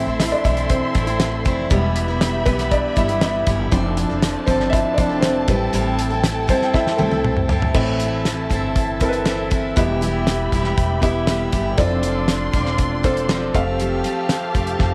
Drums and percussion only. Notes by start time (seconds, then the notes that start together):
0.20 snare, closed hi-hat
0.45 kick, closed hi-hat
0.57 closed hi-hat
0.70 kick, closed hi-hat
0.95 kick, closed hi-hat
1.07 closed hi-hat
1.20 snare, closed hi-hat
1.46 kick, closed hi-hat
1.71 kick, closed hi-hat
1.96 closed hi-hat
2.21 snare, closed hi-hat
2.46 kick, closed hi-hat
2.59 snare, closed hi-hat
2.71 kick, closed hi-hat
2.97 kick, closed hi-hat
3.09 closed hi-hat
3.21 snare, closed hi-hat
3.47 kick, closed hi-hat
3.72 kick, closed hi-hat
3.97 closed hi-hat
4.22 snare, closed hi-hat
4.48 kick, closed hi-hat
4.60 snare
4.73 kick, closed hi-hat
4.98 kick, closed hi-hat
5.22 snare, closed hi-hat
5.48 kick, closed hi-hat
5.74 closed hi-hat
5.99 closed hi-hat
6.24 snare, closed hi-hat
6.49 kick, closed hi-hat
6.62 snare
6.74 kick, snare
6.87 snare
6.99 high tom
7.12 high tom
7.25 mid tom
7.37 mid tom
7.49 floor tom
7.62 floor tom
7.74 kick, crash
8.00 closed hi-hat
8.25 snare, closed hi-hat
8.51 kick, closed hi-hat
8.76 kick, closed hi-hat
9.01 kick, closed hi-hat
9.13 closed hi-hat
9.26 snare, closed hi-hat
9.51 kick, closed hi-hat
9.77 kick, closed hi-hat
10.02 closed hi-hat
10.27 snare, closed hi-hat
10.52 kick, closed hi-hat
10.64 snare
10.78 kick, closed hi-hat
11.03 kick, closed hi-hat
11.27 snare, closed hi-hat
11.52 kick, closed hi-hat
11.78 kick, closed hi-hat
12.03 closed hi-hat
12.28 snare, closed hi-hat
12.53 kick, closed hi-hat
12.66 snare
12.78 kick, closed hi-hat
13.04 kick, closed hi-hat
13.17 closed hi-hat
13.29 snare, closed hi-hat
13.55 kick, closed hi-hat
13.80 closed hi-hat
14.04 closed hi-hat
14.29 snare, closed hi-hat
14.55 kick, closed hi-hat
14.67 closed hi-hat
14.79 kick, snare